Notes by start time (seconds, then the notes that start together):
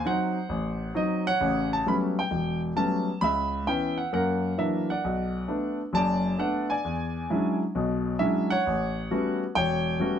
0.05 F#3 C4 D#4 C5 F#5
0.49 A1
0.95 F#3 C4 D#4 D#5
1.27 C#5 F#5
1.40 A1 C#3
1.73 A5
1.86 F#3 G3 A3 B3 C#4 B5
2.19 G5
2.31 E1
2.76 F#3 G3 A3 B3 C#4 A5
3.21 C#2 E5 B5
3.67 E3 B3 C#4 G5
3.98 F#5
4.13 F#2 A#3 A#4 F#5
4.58 E3 F#3 A#3 D4 E5
4.90 D5 F#5
5.04 B1
5.48 A3 B3 D4
5.93 F#1 F#2 D5 A5
6.38 A3 B3 D4 F#5
6.70 D5 G#5
6.85 E2
7.30 F#3 G#3 C#4 D4 E4
7.75 B1 B2
8.19 F#3 G#3 C#4 D4 E4 E5
8.50 C#5 F#5
8.67 A1
9.11 G3 A3 B3 C#4 F#4
9.55 E1 C#5 G5
10.00 G3 A3 B3 C#4 F#4